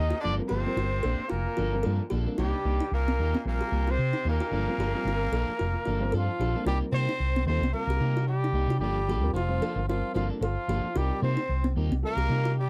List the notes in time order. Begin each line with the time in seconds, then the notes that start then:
Already playing: D#2 D#3 A#3 D#4 D#5
0.00 D#4 G4
0.10 F4, muted fingered electric bass stroke
0.20 D3 D4 D5
0.24 G1 F3 A#3 D4 A4
0.37 G3 C4 F4 A#4
0.47 G1 C3 F3 A#3 C4 G4 C5
0.52 A4, muted clean electric guitar stroke
0.66 G3 C4 F4 A#4
0.77 G1 F4
1.03 A#1 A#3 D4 A4, muted clean electric guitar stroke
1.19 muted fingered electric bass stroke
1.28 A#2 A#3 F4 A#4
1.32 F1
1.47 F4 A#4
1.57 G1 F3 A#3 D4 F4 A4 A#4
1.73 G3 C4 F4 A#4
1.83 G2 F3 A#3 D4 A4
2.10 A#1 F3 A#3 D4 G4 A4
2.25 G3 A#3 C4 D4 F4 A4 A#4, muted fingered electric bass stroke
2.38 C2 G2 G3 A#3 D#4 F4 G4
2.65 C2 A#3 D#4 G4
2.80 D#4
2.91 C2 A#2 A#3 A#4
3.08 C4
3.19 D#2 A#3 D#4 G4
3.34 C4, muted fingered electric bass stroke
3.45 A#1 A#2 G3 A#3 C4 F4 A#4
3.61 G4
3.72 C2 A#3 G4
3.87 C3 C4 F4 C5
3.98 C3
4.13 D#4
4.25 D#2 A#2 A#3 D#4 G4
4.30 A#4
4.39 D#4 F4 G4, muted fingered electric bass stroke
4.51 G1 F3 A#3 D4 A4
4.68 G3 C4 F4 A#4
4.78 G1 F3 A#3 D4 G4 A4
4.95 G3 C4 F4 A#4
5.05 G1 F4
5.32 A#1 F3 A#3 D4 A4
5.49 muted fingered electric bass stroke
5.59 F1 F4
5.74 F4 A#4
5.85 G1 F3 A#3 D4 F4 A4 A#4
6.00 G3 C4 F4 C5
6.12 G2 F3 D4 F4 A4
6.39 A#1 F3 D4 G4 A4, muted clean electric guitar stroke
6.54 G3 A#3 C4 D4 F4 A4 A#4, muted fingered electric bass stroke
6.66 C2 G3 A#3 C4 D#4 F4 G4 A#4
6.92 C3 A#3 C4 D#4 G4 C5
7.09 D#4
7.20 C2
7.36 C4
7.45 D#2 G3 A#3 C4 D#4 F4 G4 A4 C5
7.60 C2 C4
7.72 G3 A#3 C4 F4 A#4
7.87 C2 G4
8.00 C3 A#3 D#4 G4
8.16 D#4 F4 G4
8.27 G3 G4
8.44 D#4
8.52 C2 A#3 D#4 G4
8.67 C3 D#4 F4 G4
8.79 G1 F3 G3 A#3 D4 G4 A4
9.08 F3 A#3 D4 G4 A4
9.21 D2 G3 C4 F4 A#4
9.33 F1 F3 F4
9.49 G3 C4 F4 C5
9.61 F3 A#3 D4 A4
9.75 G1 F4 A#4
9.88 F3 G3 C4 F4 A#4
10.14 G1 F3 A#3 D4 F4 A4
10.30 A#3 D4 A4
10.40 G1 F3 F4 A4
10.68 G1 F3 A#3 D4 G4 A4
10.95 C2 G3 C4 D#4 F4 G4 A#4, muted clean electric guitar stroke
11.22 C3 A#3 C4 D#4 G4 C5
11.37 D#4
11.49 C2
11.64 C4
11.76 D#2 G3 A#3 C4 D#4 F4 G4 A#4
11.90 C2 C4
12.03 G3 A#3 C4 F4 A#4
12.16 C2 G4
12.29 C3 A#3 D#4 G4
12.44 D#4 F4 G4
12.60 G3 G4